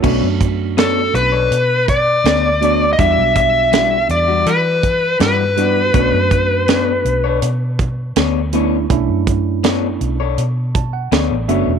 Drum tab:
CC |x-------|--------|--------|--------|
HH |-xxxxxxx|xxxxxxxx|xxxxxxxx|xxxxxxxx|
SD |--o---o-|--o---o-|--o---o-|--o---o-|
BD |oo---o--|oo---o--|oo---o--|oo---o--|